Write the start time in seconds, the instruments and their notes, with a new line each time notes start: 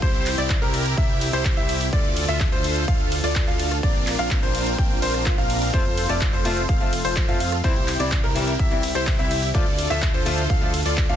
Already playing: analog synth pad C4
0.02 analog synth bass C2, analog synth pad C3 E4 G4, supersaw synth E4 G4 C5, grand piano C5, kick, closed hi-hat
0.14 closed hi-hat
0.26 clap, open hi-hat, ride
0.38 analog synth bass C2, supersaw synth E4 G4 D5, grand piano D5, closed hi-hat
0.50 kick, clap, closed hi-hat
0.62 analog synth bass C2, supersaw synth E4 G4 A#4, grand piano A#4, closed hi-hat
0.74 open hi-hat, ride
0.86 closed hi-hat
0.97 analog synth bass C2, supersaw synth E4 G4 E5, grand piano E5, kick, closed hi-hat
1.09 closed hi-hat
1.21 open hi-hat, ride
1.33 analog synth bass C2, supersaw synth E4 G4 C5, grand piano C5, cross-stick, closed hi-hat
1.45 kick, clap, closed hi-hat
1.57 analog synth bass C2, supersaw synth E4 G4 E5, grand piano E5, closed hi-hat
1.69 open hi-hat, ride
1.81 open hi-hat
1.93 analog synth bass D2, analog synth pad D3 D4 F4 A4, supersaw synth F4 A4 D5, grand piano D5, kick, closed hi-hat
2.05 closed hi-hat
2.17 open hi-hat, ride
2.28 analog synth bass D2, supersaw synth F4 A4 E5, grand piano E5, cross-stick, closed hi-hat
2.40 kick, clap, closed hi-hat
2.52 analog synth bass D2, supersaw synth F4 A4 C5, grand piano C5, closed hi-hat
2.64 open hi-hat, ride
2.76 closed hi-hat
2.88 analog synth bass D2, grand piano F5, kick, closed hi-hat
3.00 closed hi-hat
3.12 open hi-hat, ride
3.24 analog synth bass D2, supersaw synth F4 A4 D5, grand piano D5, open hi-hat
3.36 kick, clap
3.47 analog synth bass D2, supersaw synth F4 A4 F5, grand piano F5, closed hi-hat
3.59 open hi-hat, ride
3.71 cross-stick, closed hi-hat
3.83 analog synth bass A#1, analog synth pad A#3 C4, supersaw synth C4 D4 F4 A#4 D5, grand piano D5, kick, closed hi-hat
3.95 closed hi-hat
4.07 clap, open hi-hat, ride
4.19 analog synth bass A#1, supersaw synth C4 D4 F4 A#4 F5, grand piano F5, cross-stick, closed hi-hat
4.31 kick, clap, closed hi-hat
4.43 analog synth bass A#1, supersaw synth C4 D4 F4 A#4 C5, grand piano C5, closed hi-hat
4.55 open hi-hat, ride
4.67 closed hi-hat
4.78 analog synth bass A#1, supersaw synth C4 D4 F4 A#4 G5, grand piano G5, kick, closed hi-hat, swell
4.90 closed hi-hat
5.02 analog synth bass A#1, supersaw synth C4 D4 F4 A#4 C5, grand piano C5, open hi-hat, ride
5.14 cross-stick, closed hi-hat
5.26 kick, clap, closed hi-hat
5.38 analog synth bass A#1, supersaw synth C4 D4 F4 A#4 F5, grand piano F5, cross-stick, closed hi-hat
5.50 open hi-hat, ride
5.62 open hi-hat
5.73 analog synth bass F1, steel-string acoustic guitar F3 A3 C4 F4, analog synth pad A3 F4, supersaw synth F4 A4 C5, grand piano C5, kick, closed hi-hat
5.86 closed hi-hat
5.98 open hi-hat, ride
6.09 analog synth bass F1, steel-string acoustic guitar F3 A3 C4 F4, supersaw synth F4 A4 D5, grand piano D5, cross-stick, closed hi-hat
6.21 kick, clap, closed hi-hat
6.33 analog synth bass F1, supersaw synth F4 A4 C5, grand piano C5, closed hi-hat
6.45 steel-string acoustic guitar F3 A3 C4 F4, open hi-hat, ride
6.57 closed hi-hat
6.69 analog synth bass F1, supersaw synth F4 A4 F5, grand piano F5, kick, closed hi-hat
6.80 steel-string acoustic guitar F3 A3 C4 F4, closed hi-hat
6.93 open hi-hat, ride
7.05 analog synth bass F1, supersaw synth F4 A4 C5, grand piano C5, open hi-hat
7.16 kick, clap, closed hi-hat
7.28 analog synth bass F2, steel-string acoustic guitar F3 A3 C4 F4, supersaw synth F4 A4 F5, grand piano F5, closed hi-hat
7.40 open hi-hat, ride
7.52 cross-stick, closed hi-hat
7.64 analog synth bass C2, analog synth pad C3 E4 G4, steel-string acoustic guitar E3 G3 C4 E4, supersaw synth E4 G4 C5, grand piano C5, kick, closed hi-hat
7.76 closed hi-hat
7.88 clap, open hi-hat, ride
7.99 analog synth bass C2, steel-string acoustic guitar E3 G3 C4 E4, supersaw synth E4 G4 D5, grand piano D5, closed hi-hat
8.12 kick, clap, closed hi-hat
8.24 analog synth bass C2, supersaw synth E4 G4 A#4, grand piano A#4, closed hi-hat
8.35 steel-string acoustic guitar E3 G3 C4 E4, open hi-hat, ride
8.48 closed hi-hat
8.59 analog synth bass C2, supersaw synth E4 E5, grand piano E5, kick, closed hi-hat
8.71 steel-string acoustic guitar E3 G3 C4 E4, closed hi-hat
8.83 open hi-hat, ride
8.95 analog synth bass C2, supersaw synth E4 G4 C5, grand piano C5, cross-stick, closed hi-hat
9.07 kick, clap, closed hi-hat
9.18 analog synth bass C2, steel-string acoustic guitar E3 G3 C4 E4, supersaw synth E4 G4 E5, grand piano E5, closed hi-hat
9.31 open hi-hat, ride
9.43 open hi-hat
9.54 analog synth bass D2, analog synth pad D3 D4 F4 A4, steel-string acoustic guitar F3 A3 D4 F4, supersaw synth F4 A4 D5, grand piano D5, kick, closed hi-hat
9.67 closed hi-hat
9.79 open hi-hat, ride
9.90 analog synth bass D2, steel-string acoustic guitar F3 A3 D4 F4, supersaw synth F4 A4 E5, grand piano E5, cross-stick, closed hi-hat
10.02 kick, clap, closed hi-hat
10.14 analog synth bass D2, supersaw synth F4 A4 C5, grand piano C5, closed hi-hat
10.25 steel-string acoustic guitar F3 A3 D4 F4, open hi-hat, ride
10.38 closed hi-hat
10.50 analog synth bass D2, supersaw synth F4 A4 F5, grand piano F5, kick, closed hi-hat
10.61 steel-string acoustic guitar F3 A3 D4 F4, closed hi-hat
10.74 open hi-hat, ride
10.86 analog synth bass D2, supersaw synth F4 A4 D5, grand piano D5, open hi-hat
10.97 kick, clap, closed hi-hat
11.09 analog synth bass D2, steel-string acoustic guitar F3 A3 D4 F4, supersaw synth F4 A4 F5, grand piano F5, closed hi-hat